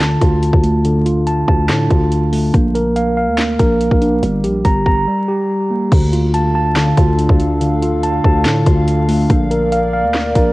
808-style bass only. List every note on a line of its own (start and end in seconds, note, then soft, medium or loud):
0.00 0.17 D2 loud
0.21 0.52 D2 loud
0.53 1.44 D2 loud
1.48 1.71 D2 loud
1.69 1.89 A2 loud
1.90 2.51 D2 loud
2.54 3.29 A#1 loud
3.28 3.58 D2 loud
3.59 3.90 A#1 loud
3.91 4.22 A#1 loud
4.23 4.45 G1 loud
4.44 4.64 A#1 loud
4.65 4.85 G1 loud
4.86 5.06 G1 loud
5.92 6.94 D2 loud
6.97 7.28 D2 loud
7.29 8.20 D2 loud
8.24 8.47 D2 loud
8.45 8.65 A2 loud
8.66 9.27 D2 loud
9.30 10.05 A#1 loud
10.04 10.34 D2 loud
10.35 10.53 A#1 loud